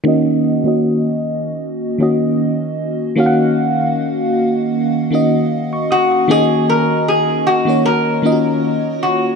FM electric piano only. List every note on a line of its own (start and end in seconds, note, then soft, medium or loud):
0.04 0.50 D#3 loud
0.04 0.50 A#3 medium
0.04 0.51 C#4 medium
0.04 0.52 F#4 medium
0.08 0.52 D#5 loud
0.64 1.68 D#3 medium
0.64 1.69 A#3 medium
0.64 1.69 C#4 medium
0.64 1.70 F#4 medium
0.68 1.71 D#5 medium
1.98 2.90 D#3 medium
1.98 2.91 A#3 medium
1.98 2.91 C#4 medium
1.98 2.92 F#4 medium
2.03 2.92 D#5 medium
3.16 4.36 D#3 loud
3.16 4.37 A#3 loud
3.16 4.37 C#4 medium
3.16 4.38 F#4 loud
3.20 3.25 F5 medium
3.26 4.42 F#5 loud
5.11 6.02 D#3 medium
5.11 6.03 A#3 medium
5.11 6.03 C#4 medium
5.11 6.04 F#4 medium
5.15 6.04 D#5 medium
5.73 5.89 C#6 medium
5.91 6.10 D#6 medium
6.12 6.48 C#6 medium
6.28 7.34 D#3 medium
6.28 7.35 A#3 medium
6.28 7.35 C#4 medium
6.28 7.36 F#4 medium
6.28 7.36 D#5 loud
7.65 8.10 D#3 medium
7.65 8.11 A#3 medium
7.65 8.12 C#4 medium
7.65 8.12 F#4 medium
7.69 8.13 C#5 medium
8.22 9.35 D#3 medium
8.22 9.35 A#3 medium
8.22 9.35 C#4 medium
8.22 8.31 F4 medium
8.26 9.35 D#5 medium
8.32 9.35 F#4 medium